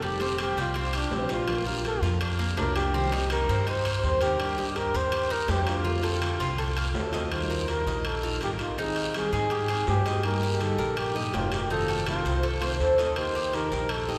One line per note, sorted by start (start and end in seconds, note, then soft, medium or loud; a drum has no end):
0.00 0.51 F1 medium
0.00 0.19 F3 medium
0.00 0.20 G3 medium
0.00 0.19 C4 medium
0.00 0.18 G4 medium
0.00 long guiro medium
0.05 0.40 G4 medium
0.19 0.37 G3 medium
0.19 0.38 C4 medium
0.19 0.56 C4 medium
0.19 0.37 G4 medium
0.19 high timbale medium
0.38 0.74 F3 soft
0.38 0.74 G3 soft
0.38 0.74 C4 medium
0.38 0.75 G4 medium
0.38 high timbale loud
0.38 short guiro medium
0.42 0.58 G4 loud
0.56 1.07 C2 medium
0.56 0.75 G3 medium
0.56 short guiro medium
0.61 0.76 F4 medium
0.74 0.93 C4 medium
0.74 muted nylon-string guitar stroke medium
0.74 high timbale medium
0.74 long guiro medium
0.79 0.98 F4 medium
0.93 1.17 D4 medium
0.93 1.29 G4 medium
0.93 high timbale medium
1.11 1.97 A#1 medium
1.11 1.29 F3 soft
1.11 1.29 G3 medium
1.11 1.29 C4 soft
1.11 1.28 G4 medium
1.11 low timbale medium
1.11 short guiro medium
1.15 1.32 C4 medium
1.29 1.48 G3 medium
1.29 1.47 C4 medium
1.29 1.65 F4 medium
1.29 1.82 F4 medium
1.29 1.47 G4 medium
1.29 high timbale medium
1.29 short guiro medium
1.48 1.65 F3 medium
1.48 1.66 A#3 medium
1.48 1.66 D4 medium
1.48 1.65 F4 medium
1.48 high timbale medium
1.48 long guiro medium
1.66 1.84 A#3 soft
1.66 1.84 D4 medium
1.66 1.84 F4 medium
1.66 2.02 A#4 medium
1.84 2.19 F3 soft
1.84 2.20 A#3 soft
1.84 2.19 D4 medium
1.84 2.20 F4 medium
1.84 2.03 A4 medium
1.84 high timbale medium
1.84 short guiro medium
2.01 2.53 F2 medium
2.01 2.20 F4 medium
2.01 short guiro medium
2.21 2.39 D4 medium
2.21 muted nylon-string guitar stroke medium
2.21 high timbale loud
2.21 long guiro medium
2.39 2.57 A#3 medium
2.57 3.43 C2 medium
2.57 2.75 F3 medium
2.57 2.75 A#3 soft
2.57 2.93 D4 medium
2.57 2.76 D4 medium
2.57 2.74 F4 medium
2.57 2.76 A#4 medium
2.57 high timbale medium
2.57 low timbale medium
2.57 short guiro medium
2.76 2.94 A#3 medium
2.76 2.94 D4 medium
2.76 2.93 F4 medium
2.76 3.27 G4 medium
2.76 high timbale medium
2.76 short guiro medium
2.94 3.12 C3 medium
2.94 3.12 D#3 medium
2.94 3.12 G3 medium
2.94 3.12 C4 medium
2.94 3.11 G4 medium
2.94 long guiro medium
3.12 3.29 D#3 medium
3.12 3.31 G3 medium
3.12 3.30 C4 medium
3.12 3.48 D#4 medium
3.12 3.30 G4 medium
3.12 high timbale medium
3.30 3.66 D#3 soft
3.30 3.67 G3 medium
3.30 3.67 C4 medium
3.30 3.67 G4 medium
3.30 3.65 A#4 loud
3.30 high timbale loud
3.30 short guiro medium
3.48 3.99 G2 medium
3.48 3.67 C4 medium
3.48 short guiro medium
3.67 3.85 D#4 medium
3.67 4.02 C5 medium
3.67 muted nylon-string guitar stroke medium
3.67 high timbale medium
3.67 long guiro medium
3.85 4.21 C5 medium
3.85 high timbale medium
4.03 4.89 D#2 medium
4.03 4.21 D#3 medium
4.03 4.21 G3 soft
4.03 4.21 C4 medium
4.03 4.20 G4 medium
4.03 4.21 C5 medium
4.03 short guiro medium
4.21 4.38 D#3 medium
4.21 4.38 G3 medium
4.21 4.39 C4 medium
4.21 4.39 G4 medium
4.21 4.78 G4 medium
4.21 4.57 A#4 medium
4.21 high timbale medium
4.21 short guiro medium
4.39 4.57 D#3 medium
4.39 4.57 G3 medium
4.39 4.58 D4 medium
4.39 4.57 G4 medium
4.39 high timbale medium
4.39 long guiro medium
4.58 4.75 G3 soft
4.58 4.75 D4 medium
4.58 4.76 G4 medium
4.58 4.93 D#5 medium
4.75 5.11 D#3 soft
4.75 5.11 G3 medium
4.75 5.11 D4 soft
4.75 5.12 G4 medium
4.75 4.98 A#4 loud
4.75 high timbale medium
4.75 short guiro medium
4.94 5.45 D#2 medium
4.94 5.12 A#4 medium
4.94 5.33 C5 loud
4.94 short guiro medium
5.12 5.30 G4 medium
5.12 muted nylon-string guitar stroke medium
5.12 high timbale loud
5.12 long guiro medium
5.30 5.48 D#4 medium
5.30 5.52 A#4 loud
5.48 6.34 F2 medium
5.48 5.66 D#3 medium
5.48 5.67 G3 medium
5.48 5.67 D4 medium
5.48 5.84 G4 medium
5.48 5.66 G4 medium
5.48 5.70 G4 medium
5.48 high timbale medium
5.48 low timbale medium
5.48 short guiro medium
5.67 5.85 G3 medium
5.67 5.85 D4 medium
5.67 6.69 F4 medium
5.67 5.85 G4 medium
5.67 high timbale medium
5.67 short guiro medium
5.84 6.03 D3 medium
5.84 6.03 A3 medium
5.84 6.03 C4 medium
5.84 6.03 F4 medium
5.84 6.01 F4 medium
5.84 long guiro medium
6.03 6.20 A3 medium
6.03 6.20 C4 medium
6.03 6.21 F4 medium
6.03 6.39 A4 medium
6.03 high timbale medium
6.21 6.56 D3 soft
6.21 6.56 A3 soft
6.21 6.56 C4 medium
6.21 6.57 F4 medium
6.21 high timbale loud
6.21 short guiro medium
6.39 6.91 C2 medium
6.39 6.58 F4 medium
6.39 short guiro medium
6.57 6.76 A4 medium
6.57 muted nylon-string guitar stroke medium
6.57 high timbale medium
6.57 long guiro medium
6.77 7.13 F5 medium
6.77 high timbale medium
6.94 7.80 D#2 medium
6.94 7.12 D3 medium
6.94 7.12 A3 medium
6.94 7.12 C4 medium
6.94 7.11 F4 medium
6.94 7.33 A4 medium
6.94 low timbale medium
6.94 short guiro medium
7.12 7.31 A3 medium
7.12 7.31 C4 medium
7.12 7.30 F4 medium
7.12 7.31 D#5 medium
7.12 high timbale medium
7.12 short guiro medium
7.31 7.67 D#3 medium
7.31 7.68 G3 medium
7.31 7.68 D#4 medium
7.31 7.68 F4 medium
7.31 7.68 C5 medium
7.31 high timbale medium
7.31 long guiro medium
7.50 7.86 A#4 medium
7.68 7.86 D#3 medium
7.68 7.86 G3 medium
7.68 7.86 D#4 medium
7.68 7.85 F4 medium
7.68 8.08 A#4 medium
7.68 high timbale medium
7.68 short guiro medium
7.86 8.37 A#1 medium
7.86 8.04 G3 soft
7.86 8.05 D#4 soft
7.86 8.04 F4 soft
7.86 8.22 D#5 medium
7.86 short guiro medium
8.05 8.42 A4 medium
8.05 muted nylon-string guitar stroke medium
8.05 high timbale medium
8.05 long guiro medium
8.23 8.41 G3 medium
8.23 8.41 D#4 medium
8.23 8.41 F4 medium
8.23 8.41 F5 medium
8.41 9.27 G#1 medium
8.41 8.59 D#3 soft
8.41 8.60 G3 medium
8.41 8.60 D#4 medium
8.41 8.59 F4 medium
8.41 8.51 G4 medium
8.41 8.77 A#4 medium
8.41 high timbale medium
8.41 short guiro medium
8.59 8.78 G3 soft
8.59 8.78 D#4 medium
8.59 8.77 F4 medium
8.59 8.78 F4 medium
8.59 high timbale medium
8.59 short guiro medium
8.78 9.14 D#3 medium
8.78 9.14 C4 medium
8.78 8.96 D#4 medium
8.78 9.15 D#4 medium
8.78 9.19 D#4 medium
8.78 9.15 G#4 medium
8.78 long guiro medium
8.96 high timbale medium
9.14 9.32 D#3 medium
9.14 9.32 G3 medium
9.14 9.33 C4 medium
9.14 9.33 D#4 medium
9.14 9.32 G#4 medium
9.14 9.89 G#4 medium
9.14 high timbale medium
9.14 short guiro medium
9.32 9.84 G#2 medium
9.32 9.49 C4 soft
9.32 9.50 D#4 soft
9.32 9.50 G#4 medium
9.32 short guiro medium
9.50 9.69 G4 medium
9.50 muted nylon-string guitar stroke medium
9.50 high timbale medium
9.50 long guiro medium
9.68 9.86 G3 medium
9.68 9.87 C4 medium
9.68 9.87 D#4 medium
9.68 9.87 G#4 medium
9.68 10.05 G#4 medium
9.68 high timbale medium
9.87 10.73 G2 medium
9.87 10.05 G3 medium
9.87 10.05 C4 soft
9.87 10.06 D#4 medium
9.87 10.22 G4 medium
9.87 10.05 G#4 medium
9.87 low timbale medium
9.87 short guiro medium
10.06 10.24 C4 soft
10.06 10.24 D#4 soft
10.06 10.23 G#4 medium
10.06 10.41 D#5 medium
10.06 high timbale medium
10.06 short guiro medium
10.23 10.60 G3 medium
10.23 10.60 A#3 medium
10.23 10.61 D#4 medium
10.23 10.61 G4 medium
10.23 10.63 A#4 medium
10.23 high timbale medium
10.23 long guiro medium
10.43 10.78 G4 medium
10.60 10.78 D3 medium
10.60 10.78 G3 medium
10.60 10.79 A#3 medium
10.60 10.79 D#4 medium
10.60 10.78 G4 medium
10.60 11.00 A4 medium
10.60 high timbale medium
10.60 short guiro medium
10.78 11.30 A#1 medium
10.78 10.95 A#3 soft
10.78 10.96 D#4 soft
10.78 10.96 G4 soft
10.78 11.14 A#4 medium
10.78 short guiro medium
10.96 11.37 G4 medium
10.96 muted nylon-string guitar stroke medium
10.96 high timbale medium
10.96 long guiro medium
11.15 11.32 G3 medium
11.15 11.32 A#3 medium
11.15 11.33 D#4 medium
11.15 11.33 G4 medium
11.15 11.33 D#5 medium
11.33 12.19 F1 medium
11.33 11.51 G3 soft
11.33 11.51 A#3 medium
11.33 11.51 D#4 medium
11.33 11.55 F4 medium
11.33 11.70 G4 medium
11.33 11.51 G4 medium
11.33 high timbale medium
11.33 low timbale medium
11.33 short guiro medium
11.52 11.71 A#3 soft
11.52 11.70 D#4 medium
11.52 11.70 G4 medium
11.52 11.71 G4 medium
11.52 high timbale medium
11.52 short guiro medium
11.70 12.06 C3 medium
11.70 12.06 D#3 medium
11.70 12.06 A3 medium
11.70 12.07 C4 medium
11.70 11.88 D#4 medium
11.70 12.07 F4 medium
11.70 12.05 A4 medium
11.70 long guiro medium
11.88 12.24 A4 medium
11.88 high timbale medium
12.06 12.25 C3 medium
12.06 12.25 D#3 medium
12.06 12.25 A3 medium
12.06 12.24 C4 medium
12.06 12.23 F4 medium
12.06 12.51 F4 loud
12.06 high timbale medium
12.06 short guiro medium
12.24 12.76 C2 medium
12.24 12.42 A3 soft
12.24 12.43 C4 soft
12.24 12.43 F4 soft
12.24 12.43 C5 medium
12.24 short guiro medium
12.43 12.61 A4 medium
12.43 muted nylon-string guitar stroke medium
12.43 high timbale medium
12.43 long guiro medium
12.61 12.78 D#3 medium
12.61 12.79 A3 medium
12.61 12.79 C4 medium
12.61 12.79 F4 medium
12.61 12.97 C5 medium
12.61 high timbale medium
12.79 13.66 D#2 medium
12.79 12.98 D#3 medium
12.79 12.98 A3 medium
12.79 12.98 C4 medium
12.79 12.98 F4 medium
12.79 13.19 A4 medium
12.79 short guiro medium
12.98 13.17 A3 soft
12.98 13.17 C4 soft
12.98 13.16 F4 soft
12.98 13.34 D#5 medium
12.98 high timbale medium
12.98 short guiro medium
13.16 13.53 D#3 medium
13.16 13.53 A#3 medium
13.16 13.54 D#4 medium
13.16 13.54 G4 medium
13.16 13.56 C5 loud
13.16 high timbale medium
13.16 long guiro medium
13.35 13.71 G4 medium
13.53 13.71 D#3 medium
13.53 13.72 A#3 medium
13.53 13.72 D#4 medium
13.53 13.71 G4 medium
13.53 13.93 A#4 loud
13.53 high timbale medium
13.53 short guiro medium
13.71 14.18 A#1 medium
13.71 13.89 A#3 soft
13.71 13.89 D#4 soft
13.71 13.89 G4 soft
13.71 14.07 A#4 medium
13.71 short guiro medium
13.89 14.18 A4 medium
13.89 muted nylon-string guitar stroke medium
13.89 high timbale loud
13.89 long guiro medium
14.08 14.18 A#3 medium
14.08 14.18 D#4 medium
14.08 14.18 G4 medium
14.08 14.18 D#5 medium